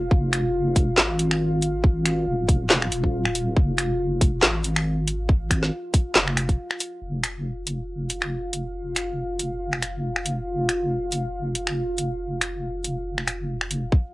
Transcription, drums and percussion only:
0.11 kick loud
0.33 finger snap medium
0.33 closed hi-hat medium
0.76 kick loud
0.76 closed hi-hat medium
0.98 snare loud
0.98 clap medium
1.19 closed hi-hat medium
1.31 finger snap medium
1.62 closed hi-hat medium
1.84 kick loud
2.06 finger snap medium
2.06 closed hi-hat medium
2.48 kick loud
2.48 closed hi-hat medium
2.70 snare loud
2.70 clap medium
2.82 finger snap medium
2.92 closed hi-hat medium
3.04 kick medium
3.25 finger snap medium
3.35 closed hi-hat medium
3.56 kick loud
3.78 finger snap medium
3.78 closed hi-hat medium
4.21 kick loud
4.21 closed hi-hat medium
4.43 snare loud
4.43 clap medium
4.64 closed hi-hat medium
4.76 finger snap medium
5.08 closed hi-hat medium
5.29 kick loud
5.51 finger snap medium
5.51 kick medium
5.51 closed hi-hat medium
5.63 snare soft
5.94 kick loud
5.94 closed hi-hat medium
6.16 snare loud
6.16 clap medium
6.28 finger snap medium
6.37 finger snap medium
6.37 closed hi-hat medium
6.49 kick medium
6.49 closed hi-hat soft
6.71 finger snap medium
6.80 closed hi-hat medium
7.24 finger snap medium
7.24 closed hi-hat medium
7.67 closed hi-hat medium
8.10 closed hi-hat medium
8.22 finger snap medium
8.53 closed hi-hat medium
8.96 finger snap medium
8.96 closed hi-hat medium
9.39 closed hi-hat medium
9.73 finger snap soft
9.82 finger snap medium
9.82 closed hi-hat medium
10.16 finger snap soft
10.26 closed hi-hat medium
10.69 finger snap medium
10.69 closed hi-hat medium
11.12 closed hi-hat medium
11.55 closed hi-hat medium
11.67 finger snap medium
11.98 closed hi-hat medium
12.41 finger snap medium
12.41 closed hi-hat medium
12.84 closed hi-hat medium
13.18 finger snap soft
13.28 finger snap medium
13.28 closed hi-hat medium
13.61 finger snap medium
13.71 closed hi-hat medium
13.92 kick loud

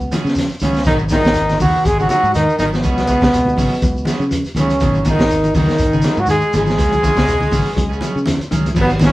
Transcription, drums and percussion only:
0.00 shekere soft
0.12 closed hi-hat medium
0.12 high conga loud
0.12 shekere medium
0.26 snare soft
0.26 shekere soft
0.35 closed hi-hat medium
0.35 shekere loud
0.39 snare soft
0.48 closed hi-hat soft
0.48 shekere soft
0.59 closed hi-hat medium
0.59 high conga medium
0.59 low conga medium
0.59 shekere medium
0.73 snare soft
0.73 closed hi-hat soft
0.73 shekere soft
0.84 kick medium
0.84 closed hi-hat medium
0.84 shekere medium
0.98 shekere soft
1.09 kick medium
1.09 snare soft
1.09 closed hi-hat soft
1.09 high conga loud
1.09 shekere medium
1.24 kick medium
1.24 snare medium
1.24 closed hi-hat soft
1.24 high conga soft
1.24 low conga medium
1.24 shekere soft
1.34 closed hi-hat medium
1.34 shekere loud
1.49 snare soft
1.49 closed hi-hat soft
1.49 high conga medium
1.49 shekere soft
1.60 kick medium
1.60 open hi-hat medium
1.60 high conga medium
1.60 low conga medium
1.60 shekere medium
1.75 shekere soft
1.85 kick medium
1.85 closed hi-hat medium
1.85 high conga soft
1.85 shekere medium
1.99 shekere soft
2.09 closed hi-hat soft
2.09 high conga loud
2.09 shekere medium
2.24 shekere soft
2.34 closed hi-hat medium
2.34 shekere medium
2.49 shekere soft
2.59 closed hi-hat medium
2.59 high conga medium
2.59 low conga medium
2.59 shekere medium
2.73 snare soft
2.73 shekere soft
2.83 kick medium
2.83 closed hi-hat medium
2.83 shekere medium
2.97 snare soft
2.97 closed hi-hat soft
2.97 shekere soft
3.07 kick medium
3.07 closed hi-hat soft
3.07 high conga loud
3.07 shekere medium
3.21 kick medium
3.21 snare medium
3.21 closed hi-hat soft
3.21 high conga soft
3.21 low conga medium
3.21 shekere soft
3.34 closed hi-hat medium
3.34 shekere medium
3.45 high conga medium
3.45 shekere soft
3.57 kick medium
3.57 open hi-hat medium
3.57 low conga medium
3.57 shekere medium
3.74 shekere soft
3.82 kick medium
3.82 closed hi-hat medium
3.82 shekere medium
3.97 shekere soft
4.05 snare soft
4.05 closed hi-hat medium
4.05 high conga medium
4.05 shekere medium
4.21 shekere soft
4.31 closed hi-hat medium
4.31 shekere medium
4.45 closed hi-hat soft
4.45 shekere soft
4.56 closed hi-hat medium
4.56 high conga medium
4.56 low conga medium
4.56 shekere medium
4.69 closed hi-hat soft
4.69 shekere soft
4.80 kick medium
4.80 closed hi-hat medium
4.80 high conga soft
4.80 shekere medium
4.94 high conga medium
4.94 shekere soft
5.05 kick medium
5.05 closed hi-hat medium
5.05 high conga loud
5.05 shekere medium
5.19 kick medium
5.19 snare medium
5.19 closed hi-hat soft
5.19 high conga soft
5.19 low conga medium
5.19 shekere soft
5.29 closed hi-hat medium
5.29 shekere medium
5.44 closed hi-hat soft
5.44 high conga medium
5.44 shekere soft
5.55 kick medium
5.55 open hi-hat medium
5.55 high conga medium
5.55 low conga medium
5.55 shekere medium
5.69 snare soft
5.69 shekere soft
5.78 kick medium
5.78 closed hi-hat medium
5.78 high conga soft
5.78 shekere medium
5.93 shekere soft
6.02 snare soft
6.02 closed hi-hat medium
6.02 high conga loud
6.02 shekere medium
6.16 shekere soft
6.26 closed hi-hat medium
6.26 shekere medium
6.41 shekere soft
6.53 closed hi-hat medium
6.53 high conga medium
6.53 low conga medium
6.53 shekere medium
6.66 snare soft
6.66 shekere soft
6.79 kick medium
6.79 closed hi-hat medium
6.79 shekere medium
6.92 closed hi-hat soft
6.92 high conga medium
6.92 shekere soft
7.03 kick medium
7.03 closed hi-hat soft
7.03 high conga medium
7.03 shekere medium
7.16 kick medium
7.16 snare medium
7.16 closed hi-hat soft
7.16 shekere soft
7.27 closed hi-hat medium
7.27 shekere medium
7.41 high conga medium
7.41 shekere soft
7.51 kick medium
7.51 open hi-hat medium
7.51 high conga medium
7.51 low conga medium
7.51 shekere medium
7.66 shekere soft
7.77 kick medium
7.77 closed hi-hat medium
7.77 high conga soft
7.77 shekere medium
7.92 shekere soft
8.01 closed hi-hat medium
8.01 high conga medium
8.01 shekere medium
8.17 shekere soft
8.26 snare soft
8.26 closed hi-hat medium
8.26 high conga loud
8.26 shekere medium
8.35 high conga medium
8.41 closed hi-hat soft
8.41 shekere soft
8.51 closed hi-hat medium
8.51 low conga medium
8.51 shekere medium
8.66 closed hi-hat soft
8.66 low conga medium
8.66 shekere soft
8.75 kick medium
8.75 crash medium
8.75 high conga soft
8.75 shekere medium
8.89 closed hi-hat soft
8.89 shekere soft
8.99 kick medium
8.99 snare medium
8.99 closed hi-hat medium
8.99 high conga loud
8.99 shekere medium

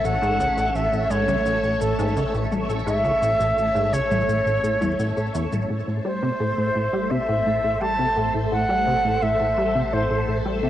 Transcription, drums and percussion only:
0.05 shaker soft
0.23 shaker soft
0.40 shaker medium
0.58 shaker soft
0.75 shaker soft
0.93 shaker soft
1.10 shaker medium
1.28 high tom medium
1.28 shaker soft
1.46 shaker soft
1.64 shaker soft
1.81 shaker medium
1.99 shaker soft
2.17 shaker soft
2.35 shaker soft
2.52 high tom medium
2.52 shaker medium
2.70 shaker soft
2.88 shaker soft
3.05 shaker soft
3.23 shaker medium
3.40 shaker soft
3.58 shaker soft
3.76 shaker soft
3.94 shaker medium
4.11 high tom medium
4.11 shaker soft
4.29 shaker soft
4.47 shaker soft
4.64 shaker medium
4.82 high tom medium
4.82 shaker soft
4.99 shaker soft
5.17 shaker soft
5.35 shaker medium
5.52 high tom soft
5.52 shaker soft

